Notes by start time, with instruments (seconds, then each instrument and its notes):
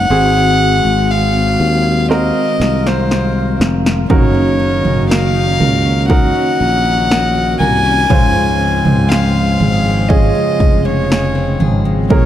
Already playing: grand piano A#3 C#4 G#4, violin F#5
0.10 fretless electric bass G#1, tonewheel organ D#3 G#3 C4 F#4, grand piano C4 F#4 G#4
0.85 fretless electric bass G#1
1.11 violin F5
1.60 fretless electric bass D#2
2.09 grand piano C4 F#4 A#4, violin D#5, tonewheel organ F5, snare
2.60 fretless electric bass C2, snare
2.87 violin C5, snare
3.11 snare
3.60 fretless electric bass F1, snare
3.86 snare
4.10 fretless electric bass F#1, grand piano C#3 D#4 F#4 A#4, steel-string acoustic guitar F#3, tonewheel organ A#3 C#4 F#4, violin C#5, kick, floor tom
4.34 steel-string acoustic guitar C#4
4.60 steel-string acoustic guitar D#4
4.85 fretless electric bass F#1, steel-string acoustic guitar C#4, floor tom
5.10 steel-string acoustic guitar A#4, violin F5, snare
5.35 steel-string acoustic guitar D#4
5.60 fretless electric bass C#2, steel-string acoustic guitar A#4, floor tom
5.85 steel-string acoustic guitar C#4
6.09 steel-string acoustic guitar F#3, grand piano D#4 F#4 A#4, violin F#5, kick, floor tom
6.35 steel-string acoustic guitar C#4
6.60 fretless electric bass A#1, steel-string acoustic guitar D#4
6.85 steel-string acoustic guitar C#4
7.10 steel-string acoustic guitar A#4, snare
7.35 steel-string acoustic guitar D#4
7.59 fretless electric bass C2, steel-string acoustic guitar A#4, violin G#5, floor tom
7.85 steel-string acoustic guitar C#4
8.10 fretless electric bass C#2, grand piano G#2 C#4 F4 C5, steel-string acoustic guitar C#3, tonewheel organ C#3 F3 G#3, kick, floor tom
8.35 steel-string acoustic guitar G#3
8.60 steel-string acoustic guitar C4
8.85 fretless electric bass C#2, steel-string acoustic guitar G#3, floor tom
9.08 steel-string acoustic guitar G#4, violin F5, snare
9.35 steel-string acoustic guitar C4
9.60 fretless electric bass G#1, steel-string acoustic guitar G#4, floor tom
9.85 steel-string acoustic guitar G#3
10.09 steel-string acoustic guitar C#3, grand piano C#4 F4 G#4, violin D#5, kick, floor tom
10.35 steel-string acoustic guitar G#3
10.60 fretless electric bass F1, kick
10.85 steel-string acoustic guitar G#3, violin C#5
11.10 steel-string acoustic guitar G#4, snare
11.35 steel-string acoustic guitar C4
11.60 fretless electric bass G#1, steel-string acoustic guitar G#4, floor tom
11.85 steel-string acoustic guitar G#3
12.10 fretless electric bass A#1, steel-string acoustic guitar A#2, tonewheel organ A#3, grand piano C#4 G#4 A#4, violin C#5, kick, floor tom